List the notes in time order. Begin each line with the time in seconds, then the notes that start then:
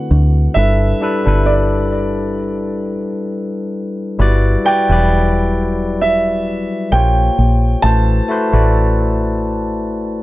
Already playing: F#5
0.11 D2
0.54 G1 G3 D4 E4 A4 E5
0.59 B4
1.01 G3 D4 E4 A4 B4
1.25 G1 G3 D4 E4 A4 B4
1.46 D5
4.19 G1 G3 E4 F#4 B4 D5
4.65 G3 E4 F#4 B4 D5 G5
4.89 E1 F#3 G3 E4 B4 D5
6.01 E5
6.92 A#1 A#3 F4 G4 C5 C#5 G5
7.38 A#1
7.82 A1 A3 E4 F#4 B4 C5 A5
8.29 A3 E4 F#4 B4 C5
8.52 A1 A3 E4 F#4 B4 D5